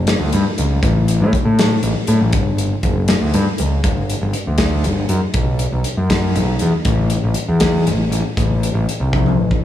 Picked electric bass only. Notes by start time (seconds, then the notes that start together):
Already playing: F#1
0.20 D2
0.34 G2
0.58 C#2
0.83 A1
1.21 A2
1.45 A2
1.83 A1
2.08 A2
2.21 A1
2.34 G1
2.84 F#1
3.21 D2
3.34 G2
3.60 C#2
3.84 G1
4.22 G1
4.47 D2
4.84 G1
5.09 F#2
5.34 B1
5.72 B1
5.97 F#2
6.35 B1
6.62 E2
6.85 A1
7.24 A1
7.48 E2
7.86 A1
8.10 A1
8.37 A1
8.74 A1
9.00 C2
9.37 A1